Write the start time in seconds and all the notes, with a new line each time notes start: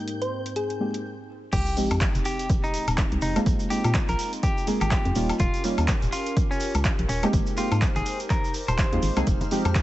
Already playing: G#2 G#3 A#3 C4 D#4 G4 A#4 G5 G6
0.08 closed hi-hat
0.22 C5, closed hi-hat
0.46 closed hi-hat
0.56 G#4, closed hi-hat
0.70 closed hi-hat
0.80 G#3 A#3 C4 D#4 G4
0.94 closed hi-hat
1.53 F1 G#3 C4 D#4 G4, kick, closed hi-hat, crash, sub drop, cabasa
1.67 closed hi-hat, cabasa
1.76 F3 G#3 C4 D#4 G4, open hi-hat, cabasa
1.90 F2, closed hi-hat, cabasa, high woodblock
2.01 kick, clap, closed hi-hat, cabasa
2.15 F1, closed hi-hat, cabasa
2.25 G4, open hi-hat, cabasa
2.39 closed hi-hat, cabasa
2.49 kick, closed hi-hat, cabasa
2.64 D#4, cabasa
2.74 open hi-hat, cabasa
2.88 D#1, closed hi-hat, cabasa, high woodblock
2.98 kick, clap, closed hi-hat, cabasa
3.12 C2, closed hi-hat
3.22 F1 D#4, open hi-hat, cabasa
3.36 G#3 A#3 C4 D#4 F4, closed hi-hat, cabasa, high woodblock
3.46 A#1 F4, kick, closed hi-hat, cabasa
3.59 closed hi-hat, cabasa
3.70 G#3 A#3 C4 D#4 F4 G4, open hi-hat, cabasa
3.84 A#2, closed hi-hat, cabasa, high woodblock
3.94 kick, clap, closed hi-hat, cabasa
4.09 A#1 A#4, closed hi-hat, cabasa
4.19 open hi-hat, cabasa
4.33 closed hi-hat, cabasa
4.43 G4, kick, closed hi-hat, cabasa
4.57 cabasa
4.67 G#3 A#3 C4 D#4 G#4, open hi-hat, cabasa
4.81 G#1 G4, closed hi-hat, cabasa, high woodblock
4.91 kick, clap, closed hi-hat, cabasa
5.05 F2, closed hi-hat
5.15 D#1 G3 A#3 C#4 D#4 F4 G4 A#4, open hi-hat, cabasa
5.30 closed hi-hat, cabasa, high woodblock
5.39 D#1 F4, kick, closed hi-hat, cabasa
5.54 closed hi-hat, cabasa
5.63 G3 A#3 C#4 D#4 F4, open hi-hat, cabasa
5.78 D#2, closed hi-hat, cabasa, high woodblock
5.88 kick, clap, closed hi-hat, cabasa
6.02 D#1, closed hi-hat, cabasa
6.12 F4, open hi-hat, cabasa
6.26 closed hi-hat, cabasa
6.37 kick, closed hi-hat, cabasa
6.51 C#4, cabasa
6.60 open hi-hat, cabasa
6.74 C#2, closed hi-hat, cabasa, high woodblock
6.85 kick, clap, closed hi-hat, cabasa
6.99 A#1, closed hi-hat
7.09 D#1 C#4, open hi-hat, cabasa
7.23 G#3 A#3 C4 D#4 G4, closed hi-hat, cabasa, high woodblock
7.33 G#1 D#4 G4 A#4 C5, kick, closed hi-hat, cabasa
7.46 closed hi-hat, cabasa
7.57 G#3 A#3 C4 D#4 F4 G4, open hi-hat, cabasa
7.72 G#2, closed hi-hat, cabasa, high woodblock
7.82 kick, clap, closed hi-hat, cabasa
7.96 G#1 G#4, closed hi-hat, cabasa
8.06 open hi-hat, cabasa
8.20 closed hi-hat, cabasa
8.30 A#4, kick, clap, closed hi-hat, cabasa
8.44 cabasa
8.54 open hi-hat, cabasa
8.68 D#1 C5, closed hi-hat, cabasa, high woodblock
8.78 kick, clap, closed hi-hat, cabasa
8.92 D#2 G#3 A#3 C4 D#4 F4, closed hi-hat
9.03 G#1, open hi-hat, cabasa
9.16 C2 G#3 A#3 C4 D#4 G#4, closed hi-hat, cabasa, high woodblock
9.27 F1 G#4 F6, kick, closed hi-hat, cabasa
9.41 closed hi-hat, muted conga, high conga, cabasa
9.51 F3 G#3 C4 D#4 G4, open hi-hat, cabasa
9.65 F2, closed hi-hat, low conga, cabasa, high woodblock
9.75 kick, clap, closed hi-hat, muted conga, high conga, cabasa